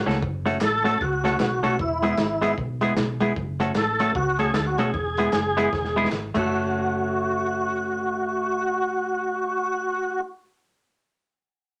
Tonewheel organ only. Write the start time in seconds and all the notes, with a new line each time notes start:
0.64 A4
1.02 F#4
1.41 F#4
1.81 E4
3.77 A4
4.16 F#4
4.39 G#4
4.54 A4
4.67 F#4
4.78 G#4
6.37 F#4